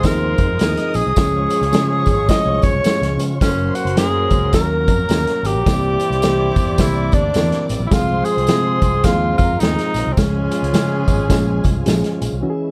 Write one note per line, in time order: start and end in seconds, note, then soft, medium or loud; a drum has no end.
0.00 0.90 C3 medium
0.00 3.38 F3 medium
0.00 0.90 G#3 medium
0.00 3.37 G#3 medium
0.00 1.12 C4 medium
0.00 1.12 D#4 medium
0.00 0.90 F4 medium
0.00 0.57 C5 medium
0.00 0.57 C6 loud
0.00 kick medium
0.00 closed hi-hat loud
0.04 0.34 D#2 loud
0.04 0.49 F3 medium
0.04 0.50 C4 medium
0.04 0.50 D#4 medium
0.04 0.49 G#4 medium
0.04 0.97 A#4 loud
0.04 snare loud
0.04 tambourine loud
0.38 0.58 F2 medium
0.38 kick loud
0.38 closed hi-hat medium
0.38 tambourine medium
0.59 0.76 D#2 medium
0.59 1.06 F3 medium
0.59 1.06 C4 medium
0.59 1.06 D#4 medium
0.59 1.06 G#4 medium
0.59 1.15 D#5 medium
0.59 1.16 D#6 medium
0.59 snare loud
0.59 closed hi-hat medium
0.59 tambourine medium
0.77 snare soft
0.77 closed hi-hat medium
0.94 1.04 A#1 loud
0.94 2.29 G#4 loud
0.94 closed hi-hat medium
0.94 tambourine medium
1.07 1.16 C2 medium
1.16 1.46 C#2 loud
1.16 3.15 F3 medium
1.16 1.62 F3 medium
1.16 1.62 G#3 medium
1.16 3.14 C#4 medium
1.16 5.63 C#4 medium
1.16 1.62 C#4 medium
1.16 3.39 F4 medium
1.16 3.15 G#4 loud
1.16 1.62 G#4 medium
1.16 3.38 C#5 medium
1.16 3.38 C#6 loud
1.16 kick loud
1.16 snare loud
1.16 closed hi-hat medium
1.16 tambourine medium
1.50 closed hi-hat medium
1.50 tambourine medium
1.61 1.71 C#2 medium
1.61 closed hi-hat medium
1.72 2.03 C#3 loud
1.72 2.18 F3 medium
1.72 2.18 G#3 medium
1.72 2.18 C#4 medium
1.72 2.18 G#4 loud
1.72 snare loud
1.72 closed hi-hat medium
1.72 tambourine medium
2.06 2.26 G#1 medium
2.06 kick medium
2.06 closed hi-hat medium
2.06 tambourine medium
2.28 2.73 F3 medium
2.28 2.74 G#3 medium
2.28 2.74 C#4 medium
2.28 2.74 G#4 medium
2.28 2.65 D#5 loud
2.28 kick medium
2.28 snare loud
2.28 closed hi-hat medium
2.28 tambourine loud
2.46 2.60 C2 medium
2.62 2.73 C#2 medium
2.62 3.19 C#5 loud
2.62 kick loud
2.62 closed hi-hat medium
2.62 tambourine medium
2.73 2.83 C2 medium
2.84 3.30 F3 medium
2.84 3.30 G#3 medium
2.84 3.30 C#4 medium
2.84 2.93 G4 medium
2.84 snare loud
2.84 closed hi-hat medium
2.84 tambourine medium
2.92 3.34 G#4 medium
3.02 3.16 C#2 medium
3.02 snare soft
3.02 closed hi-hat medium
3.17 3.38 C#3 loud
3.17 closed hi-hat medium
3.17 tambourine medium
3.40 3.71 F#1 loud
3.40 3.87 F#3 medium
3.40 5.64 F#3 medium
3.40 5.40 F#3 medium
3.40 5.64 A#3 medium
3.40 3.87 A#3 medium
3.40 3.77 C#4 medium
3.40 5.40 C#4 medium
3.40 3.87 C#4 medium
3.40 5.64 F#4 medium
3.40 3.50 A4 medium
3.40 5.40 A#4 medium
3.40 4.51 C5 medium
3.40 4.52 C6 medium
3.40 kick loud
3.40 snare loud
3.40 closed hi-hat medium
3.40 tambourine medium
3.49 3.90 A#4 medium
3.75 3.98 F#4 medium
3.75 closed hi-hat medium
3.75 tambourine medium
3.85 3.95 F#1 medium
3.85 closed hi-hat medium
3.96 4.26 F#2 loud
3.96 4.42 F#3 medium
3.96 4.43 A#3 medium
3.96 4.43 C#4 medium
3.96 4.51 G#4 loud
3.96 4.43 A#4 medium
3.96 snare loud
3.96 closed hi-hat loud
3.96 tambourine medium
4.30 4.51 C#2 loud
4.30 kick medium
4.30 closed hi-hat medium
4.30 tambourine medium
4.53 4.88 D#2 loud
4.53 4.99 F#3 medium
4.53 4.99 A#3 medium
4.53 4.99 C#4 medium
4.53 4.62 A4 medium
4.53 5.64 A#4 medium
4.53 5.48 A#4 loud
4.53 5.65 A#5 medium
4.53 kick medium
4.53 snare loud
4.53 closed hi-hat medium
4.53 tambourine medium
4.61 5.03 A#4 medium
4.88 5.08 F2 medium
4.88 kick loud
4.88 closed hi-hat medium
4.88 tambourine medium
5.09 5.25 D#2 medium
5.09 5.55 F#3 medium
5.09 5.55 A#3 medium
5.09 5.55 C#4 medium
5.09 5.18 G#4 medium
5.09 snare loud
5.09 closed hi-hat medium
5.09 tambourine medium
5.17 5.59 A#4 medium
5.27 snare soft
5.27 closed hi-hat medium
5.43 5.53 G#1 medium
5.43 6.82 G4 loud
5.43 closed hi-hat medium
5.43 tambourine medium
5.55 5.65 A#1 medium
5.66 5.96 C2 loud
5.66 6.12 E3 medium
5.66 7.90 G3 medium
5.66 7.65 G3 medium
5.66 6.12 A#3 medium
5.66 7.90 A#3 medium
5.66 10.13 C4 medium
5.66 6.12 C4 medium
5.66 7.65 E4 medium
5.66 7.90 E4 medium
5.66 6.12 G4 medium
5.66 7.66 C5 medium
5.66 7.88 D5 medium
5.66 7.87 D6 loud
5.66 kick loud
5.66 snare loud
5.66 closed hi-hat medium
5.66 tambourine medium
6.00 closed hi-hat medium
6.00 tambourine medium
6.10 6.50 C2 medium
6.10 closed hi-hat medium
6.22 6.68 E3 medium
6.22 6.68 A#3 medium
6.22 6.68 C4 medium
6.22 6.68 G4 loud
6.22 snare loud
6.22 closed hi-hat loud
6.22 tambourine medium
6.56 6.76 E2 loud
6.56 kick medium
6.56 closed hi-hat medium
6.56 tambourine medium
6.78 7.08 C2 loud
6.78 6.87 D3 medium
6.78 7.24 A#3 medium
6.78 7.24 C4 medium
6.78 7.16 E4 loud
6.78 7.25 G4 medium
6.78 kick medium
6.78 snare loud
6.78 closed hi-hat loud
6.78 tambourine loud
6.85 7.27 E3 medium
7.12 7.33 D2 medium
7.12 7.70 D4 loud
7.12 kick loud
7.12 closed hi-hat medium
7.12 tambourine medium
7.34 7.50 E2 loud
7.34 7.43 D3 medium
7.34 7.81 A#3 medium
7.34 7.81 C4 medium
7.34 7.81 A#4 medium
7.34 snare medium
7.34 closed hi-hat loud
7.34 tambourine medium
7.42 7.84 E3 medium
7.52 snare soft
7.52 closed hi-hat medium
7.69 7.79 A1 medium
7.69 closed hi-hat medium
7.69 tambourine medium
7.80 7.90 A#1 medium
7.87 9.90 F3 medium
7.87 8.37 G#3 medium
7.87 9.90 C4 medium
7.87 8.37 C4 medium
7.87 7.94 E4 medium
7.87 9.90 G#4 medium
7.91 8.21 C2 loud
7.91 8.37 F3 medium
7.91 10.16 F3 medium
7.91 12.39 G#3 medium
7.91 8.26 F4 loud
7.91 10.16 F4 medium
7.91 8.37 G#4 medium
7.91 9.36 C5 medium
7.91 9.36 C6 loud
7.91 kick loud
7.91 snare loud
7.91 closed hi-hat medium
7.91 tambourine medium
8.25 9.06 G#4 loud
8.25 closed hi-hat medium
8.25 tambourine medium
8.37 8.47 C2 medium
8.37 closed hi-hat medium
8.47 8.78 C3 loud
8.47 8.93 F3 medium
8.47 8.93 G#3 medium
8.47 8.93 C4 medium
8.47 8.94 G#4 medium
8.47 snare loud
8.47 closed hi-hat loud
8.47 tambourine medium
8.82 9.02 C2 loud
8.82 kick medium
8.82 closed hi-hat medium
8.82 tambourine medium
9.04 9.34 D#2 loud
9.04 9.50 F3 medium
9.04 9.50 G#3 medium
9.04 9.51 C4 medium
9.04 9.37 F4 loud
9.04 9.51 G#4 loud
9.04 kick medium
9.04 snare loud
9.04 closed hi-hat loud
9.04 tambourine loud
9.38 9.59 F2 medium
9.38 9.62 F4 loud
9.38 10.16 A#4 medium
9.38 10.16 A#5 medium
9.38 kick loud
9.38 closed hi-hat medium
9.38 tambourine medium
9.60 9.76 D#2 medium
9.60 10.07 F3 medium
9.60 10.07 G#3 medium
9.60 10.07 C4 medium
9.60 10.14 D#4 loud
9.60 10.07 G#4 medium
9.60 snare loud
9.60 closed hi-hat medium
9.60 tambourine medium
9.79 snare soft
9.79 closed hi-hat medium
9.94 10.04 A#1 medium
9.94 closed hi-hat medium
9.94 tambourine medium
10.07 10.16 C2 medium
10.12 10.20 C4 medium
10.17 10.47 C#2 loud
10.17 12.17 C#3 medium
10.17 10.62 F3 medium
10.17 12.42 F3 medium
10.17 10.63 G#3 medium
10.17 12.17 G#3 medium
10.17 10.63 C#4 medium
10.17 11.87 C#4 medium
10.17 12.42 C#4 medium
10.17 12.17 F4 loud
10.17 12.41 F4 medium
10.17 10.63 G#4 medium
10.17 12.40 G#4 medium
10.17 12.39 G#5 loud
10.17 kick loud
10.17 snare loud
10.17 closed hi-hat medium
10.17 tambourine medium
10.51 closed hi-hat medium
10.51 tambourine medium
10.63 10.72 C#2 medium
10.63 closed hi-hat medium
10.73 11.03 C#3 medium
10.73 11.19 F3 medium
10.73 11.19 G#3 medium
10.73 11.19 C#4 medium
10.73 11.19 G#4 medium
10.73 snare loud
10.73 closed hi-hat loud
10.73 tambourine medium
11.08 11.28 G#1 medium
11.08 kick medium
11.08 closed hi-hat medium
11.08 tambourine medium
11.29 11.60 A#1 loud
11.29 11.75 F3 medium
11.29 11.75 G#3 medium
11.29 11.75 C#4 medium
11.29 11.76 G#4 loud
11.29 kick medium
11.29 snare loud
11.29 closed hi-hat loud
11.29 tambourine medium
11.64 11.84 C2 medium
11.64 kick loud
11.64 closed hi-hat medium
11.64 tambourine medium
11.86 12.02 A#1 medium
11.86 12.32 F3 medium
11.86 12.32 G#3 medium
11.86 12.32 C#4 medium
11.86 11.94 G4 medium
11.86 snare loud
11.86 closed hi-hat medium
11.86 tambourine medium
11.93 12.35 G#4 loud
12.04 snare soft
12.04 closed hi-hat medium
12.22 12.31 A#1 medium
12.22 closed hi-hat medium
12.22 tambourine medium
12.33 12.42 C2 medium
12.42 12.71 E3 loud
12.42 12.71 E3 medium
12.42 12.71 G#3 medium
12.42 12.71 C#4 loud
12.42 12.71 C#4 medium
12.42 12.71 E4 medium
12.42 12.51 F#4 medium
12.50 12.71 G#4 loud